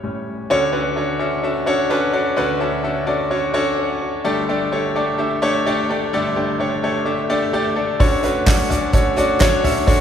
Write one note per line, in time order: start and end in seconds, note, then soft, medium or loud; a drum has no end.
0.00 0.03 A2 medium
0.00 0.25 A2 soft
0.00 0.04 G3 medium
0.00 0.25 G3 soft
0.00 0.04 C#4 medium
0.00 0.51 C#5 medium
0.04 0.25 C#4 medium
0.50 2.34 D2 medium
0.50 2.34 D3 medium
0.50 0.68 C#4 loud
0.50 0.68 D4 medium
0.50 0.68 F#4 medium
0.50 0.68 A4 medium
0.50 0.68 C#5 loud
0.72 0.90 C#4 medium
0.72 0.90 D4 medium
0.72 0.91 F#4 medium
0.72 0.91 A4 medium
0.72 0.91 B4 loud
0.96 1.14 C#4 medium
0.96 1.14 D4 medium
0.96 1.14 F#4 medium
0.96 1.14 A4 medium
0.96 1.14 C#5 loud
1.19 1.37 C#4 medium
1.19 1.37 D4 medium
1.19 1.37 F#4 medium
1.19 1.38 A4 medium
1.19 1.38 E5 medium
1.43 1.61 C#4 medium
1.43 1.61 D4 medium
1.43 1.61 F#4 medium
1.43 1.61 A4 medium
1.43 1.62 E5 loud
1.66 1.84 C#4 loud
1.66 1.84 D4 loud
1.66 1.85 F#4 loud
1.66 1.85 A4 loud
1.66 1.85 C#5 loud
1.90 2.08 C#4 loud
1.90 2.08 D4 loud
1.90 2.08 F#4 loud
1.90 2.08 A4 loud
1.90 2.08 B4 loud
2.13 2.31 C#4 medium
2.13 2.31 D4 medium
2.13 2.31 F#4 medium
2.13 2.31 A4 medium
2.13 2.31 D5 loud
2.36 4.21 D2 medium
2.36 4.21 D3 medium
2.36 2.55 C#4 loud
2.36 2.55 D4 loud
2.36 2.55 F#4 loud
2.36 2.55 A4 loud
2.36 2.55 B4 loud
2.60 2.78 C#4 medium
2.60 2.78 D4 medium
2.60 2.78 F#4 medium
2.60 2.78 A4 medium
2.60 2.78 E5 medium
2.84 3.02 C#4 medium
2.84 3.02 D4 medium
2.84 3.02 F#4 medium
2.84 3.02 A4 medium
2.84 3.02 E5 loud
3.06 3.25 C#4 medium
3.06 3.25 D4 medium
3.06 3.25 F#4 medium
3.06 3.25 A4 medium
3.06 3.25 D5 loud
3.30 3.48 C#4 medium
3.30 3.49 D4 medium
3.30 3.49 F#4 medium
3.30 3.49 A4 medium
3.30 3.49 C#5 loud
3.54 3.72 C#4 loud
3.54 3.72 D4 loud
3.54 3.72 F#4 loud
3.54 3.72 A4 loud
3.54 3.72 C#5 loud
3.78 4.00 C#5 medium
3.78 4.01 F#5 medium
4.01 4.46 F#4 medium
4.01 4.46 C#5 medium
4.24 6.08 G1 medium
4.24 6.08 G2 medium
4.24 4.42 A3 loud
4.24 4.42 D4 loud
4.24 4.43 G4 loud
4.24 4.43 A4 loud
4.24 4.42 D5 loud
4.49 4.66 A3 loud
4.49 4.66 D4 medium
4.49 4.66 G4 medium
4.49 4.66 A4 medium
4.49 4.66 D5 loud
4.72 4.89 A3 medium
4.72 4.90 D4 medium
4.72 4.90 G4 medium
4.72 4.90 A4 medium
4.72 4.90 C#5 loud
4.95 5.13 A3 loud
4.95 5.13 D4 medium
4.95 5.13 G4 medium
4.95 5.13 A4 medium
4.95 5.13 D5 loud
5.18 5.36 A3 medium
5.18 5.36 D4 medium
5.18 5.36 G4 medium
5.18 5.36 A4 medium
5.18 5.36 E5 loud
5.42 5.60 A3 loud
5.42 5.60 D4 loud
5.42 5.60 G4 loud
5.42 5.60 A4 loud
5.42 5.60 C#5 loud
5.66 5.84 A3 loud
5.66 5.84 D4 loud
5.66 5.84 G4 loud
5.66 5.84 A4 loud
5.66 5.84 D5 loud
5.89 6.07 A3 medium
5.89 6.07 D4 medium
5.89 6.07 G4 medium
5.89 6.07 A4 medium
5.89 6.07 D5 loud
6.13 7.97 G1 medium
6.13 7.97 G2 medium
6.13 6.30 A3 loud
6.13 6.31 D4 loud
6.13 6.31 G4 loud
6.13 6.31 A4 loud
6.13 6.31 D5 loud
6.36 6.53 A3 medium
6.36 6.54 D4 medium
6.36 6.54 G4 medium
6.36 6.54 A4 medium
6.36 6.54 D5 loud
6.60 6.77 A3 medium
6.60 6.77 D4 medium
6.60 6.77 G4 medium
6.60 6.77 A4 medium
6.60 6.77 C#5 loud
6.83 7.01 A3 medium
6.83 7.01 D4 medium
6.83 7.01 G4 medium
6.83 7.01 A4 medium
6.83 7.01 C#5 loud
7.06 7.24 A3 medium
7.06 7.23 D4 medium
7.06 7.23 G4 medium
7.06 7.24 A4 medium
7.06 7.24 E5 loud
7.30 7.47 A3 loud
7.30 7.47 D4 loud
7.30 7.47 G4 loud
7.30 7.47 A4 loud
7.30 7.47 D5 loud
7.53 7.71 A3 loud
7.53 7.71 D4 medium
7.53 7.71 G4 loud
7.53 7.71 A4 loud
7.53 7.71 D5 loud
7.76 7.94 A3 medium
7.76 7.94 D4 medium
7.76 7.94 G4 medium
7.76 7.94 A4 medium
7.76 7.94 D5 loud
7.99 9.83 D2 medium
7.99 9.83 D3 medium
7.99 10.01 A3 medium
7.99 8.17 C#4 loud
7.99 8.17 D4 loud
7.99 10.01 D4 medium
7.99 10.01 F#4 medium
7.99 8.18 F#4 loud
7.99 8.17 A4 loud
7.99 10.01 C#5 medium
7.99 8.18 C#5 loud
7.99 9.85 F#5 medium
7.99 kick loud
7.99 open hi-hat medium
8.23 8.41 C#4 medium
8.23 8.41 D4 medium
8.23 8.41 F#4 medium
8.23 8.41 A4 medium
8.23 8.41 B4 loud
8.23 hi-hat pedal medium
8.23 open hi-hat medium
8.46 8.64 C#4 medium
8.46 8.64 D4 medium
8.46 8.64 F#4 medium
8.46 8.64 A4 medium
8.46 8.65 C#5 medium
8.46 kick loud
8.46 snare loud
8.46 clap medium
8.46 hi-hat pedal medium
8.46 open hi-hat medium
8.70 8.87 C#4 medium
8.70 8.88 D4 medium
8.70 8.88 F#4 medium
8.70 8.88 A4 medium
8.70 8.88 D5 loud
8.70 floor tom medium
8.70 hi-hat pedal medium
8.70 open hi-hat medium
8.93 9.11 C#4 medium
8.93 9.11 D4 medium
8.93 9.11 F#4 medium
8.93 9.11 A4 medium
8.93 9.11 C#5 loud
8.93 kick loud
8.93 hi-hat pedal medium
8.93 open hi-hat medium
9.16 9.35 C#4 loud
9.16 9.35 D4 loud
9.16 9.35 F#4 loud
9.16 9.35 A4 loud
9.16 9.35 D5 loud
9.16 hi-hat pedal medium
9.16 open hi-hat medium
9.40 9.58 C#4 loud
9.40 9.58 D4 loud
9.40 9.59 F#4 loud
9.40 9.58 A4 loud
9.40 9.58 C#5 loud
9.40 kick loud
9.40 snare loud
9.40 clap loud
9.40 hi-hat pedal medium
9.40 open hi-hat loud
9.64 9.81 C#4 medium
9.64 9.82 D4 medium
9.64 9.82 F#4 medium
9.64 9.82 A4 medium
9.64 9.82 E5 loud
9.64 floor tom medium
9.64 hi-hat pedal medium
9.64 open hi-hat medium
9.87 10.01 D2 medium
9.87 10.01 D3 medium
9.87 10.01 C#4 loud
9.87 10.01 D4 loud
9.87 10.01 F#4 loud
9.87 10.01 A4 loud
9.87 10.01 C#5 loud
9.87 10.01 E5 medium
9.87 kick loud
9.87 hi-hat pedal medium
9.87 open hi-hat medium